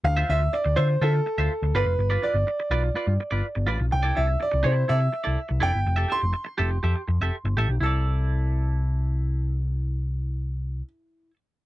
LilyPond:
<<
  \new Staff \with { instrumentName = "Grand piano" } { \time 4/4 \key c \major \tempo 4 = 124 f''8 e''8 d''8 c''8 a'4. b'8~ | b'8 d''2. r8 | g''8 e''8 d''8 c''8 e''4. g''8~ | g''8 c'''2. r8 |
e'''1~ | e'''1 | }
  \new Staff \with { instrumentName = "Clean electric guitar" } { \time 4/4 \key c \major r16 <f' c'' e''>16 <f' c'' e''>16 r8. <f' c'' e''>16 r16 <f' c'' e''>16 r8 <f' c'' e''>16 r8 <f' b' d''>16 r16 | r16 <f' b' d''>16 <f' b' d''>16 r8. <f' b' d''>16 r16 <f' b' d''>16 r8 <f' b' d''>16 r8 <f' b' d''>16 r16 | r16 <e' a' d''>16 <e' a' d''>16 r8. <e' a' d''>8 <e' a' d''>16 r8 <e' a' d''>16 r8 <e' a' d''>16 r16 | r16 <g' a' e''>16 <g' a' e''>16 r8. <g' a' e''>16 r16 <g' a' e''>16 r8 <g' a' e''>16 r8 <g' a' e''>16 r16 |
<e' a' d''>1~ | <e' a' d''>1 | }
  \new Staff \with { instrumentName = "Picked electric bass" } { \clef bass \time 4/4 \key c \major d,8 d,8 r16 d,16 d8 d8 r16 d,16 r16 d,16 g,,16 f,,16 | g,,8 r16 g,,16 r8 b,,8 r16 g,16 r16 g,,16 r16 g,,16 a,,16 b,,16 | c,8 c,8 r16 c,16 c8 c8 r16 c,16 r16 c,16 f,,16 g,,16 | f,,8 r16 f,,16 r8 f,,8 f,16 r16 f,16 f,,16 r16 g,,16 a,,16 b,,16 |
c,1~ | c,1 | }
>>